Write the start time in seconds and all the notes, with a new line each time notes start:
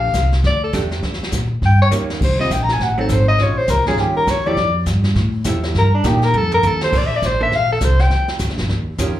Already playing: A#1 A3 D4 G4 F5
0.13 C2, kick, snare, hi-hat pedal
0.32 snare
0.44 D2 D5, brush sweep, kick, snare
0.64 A4
0.73 E2 A3 D4 G4, kick, snare, hi-hat pedal
0.91 snare
1.03 D#2, brush sweep, kick, snare
1.13 snare
1.21 muted upright bass stroke, snare
1.32 A#2, kick, snare, hi-hat pedal
1.62 G2 G5, brush sweep, kick, snare
1.82 C#5
1.91 D#2 D#3 A#3 C#4 G4, snare, hi-hat pedal
2.10 snare
2.21 C2 C5, brush sweep, kick, snare, crash
2.39 G3 C4 F4 D#5
2.50 A#1 G5, kick, snare, hi-hat pedal
2.63 A#5
2.69 G#5, snare
2.80 A1 F#5, brush sweep, kick, snare
2.98 F#3 C4 D#4 A4
3.09 G#1, kick, snare, hi-hat pedal
3.13 C5
3.28 D#5
3.38 A#1 G#3 C#4 F4 C#5, brush sweep, kick, snare
3.58 C5
3.67 C#2 A#4, kick, snare, hi-hat pedal
3.79 A#1
3.86 G#1 D#3 G3 C#4 F4 G#4, snare
3.97 D#2 G4, brush sweep, kick, snare
4.17 A#4
4.27 E2 C#5, kick, snare, hi-hat pedal
4.46 F3 A3 E4 G4 D5
4.57 F2, brush sweep, kick, snare
4.86 G2, kick, snare, hi-hat pedal
5.04 snare
5.15 A2, brush sweep, kick, snare
5.44 E2 F3 A3 E4 G4, kick, snare, hi-hat pedal
5.63 snare
5.74 G2, brush sweep, kick, snare
5.79 A#4
5.95 D4
6.04 A#2 A#3 D#4 G4, kick, snare, hi-hat pedal
6.08 G4
6.22 A#4, snare
6.34 F2 A4, high tom
6.52 A#4, floor tom
6.63 D#2, floor tom, hi-hat pedal
6.67 A4
6.81 C5, snare
6.92 A#1 A#3 D4 A4 C5, brush sweep, kick, snare, crash
6.98 D5
7.07 E5
7.16 D5
7.22 A1, kick, snare, hi-hat pedal
7.26 C5
7.40 A#3 D4 A4 C5 E5
7.51 A#1, brush sweep, kick, snare
7.56 F5
7.73 A4
7.81 C2, kick, snare, hi-hat pedal
7.85 C5
7.99 G5, snare
8.10 E2, brush sweep, kick, snare
8.28 snare
8.39 D2, kick, snare, hi-hat pedal
8.50 A#1, snare
8.58 G1, snare
8.69 D#2, brush sweep, kick, snare
8.98 F2 D#3 C#4 F4 G4, kick, snare, hi-hat pedal